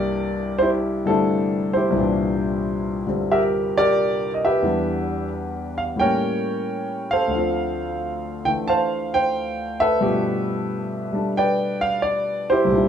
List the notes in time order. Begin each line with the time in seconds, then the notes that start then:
Already playing: C2 G2 E3 A#3 D4 G4 A#4 D5
0.58 E4 G4 C5
1.06 G2 D3 G3 A3 C4 A4
1.10 D4 E4
1.73 E4 G4 C5
1.90 C2 G2
1.94 E3
1.99 A#2 D4
3.07 G2 D3 G3 C4
3.31 G4 A#4 E5
3.78 G4 A#4 D5
4.34 D#5
4.45 G4 B4 E5
4.62 E2 E3 G3
4.66 D4
5.78 F5
5.96 A2 G3 A#3 G5
6.01 C#4 A#4 C#5
7.11 A4 C5 F5
7.28 D2 D3
7.35 F3 C4
8.45 D3 E3 A3 G5
8.67 C5 F5 A5
9.14 C5 G5
9.80 A4 B4 E5
10.01 G2 B2 F3 A3 G4
11.12 G3 D4 A4
11.37 B4 D5 G5
11.81 F5
12.02 D5
12.50 E4 G4 C5
12.65 C2 G2
12.69 A#2 G3
12.74 D4 E4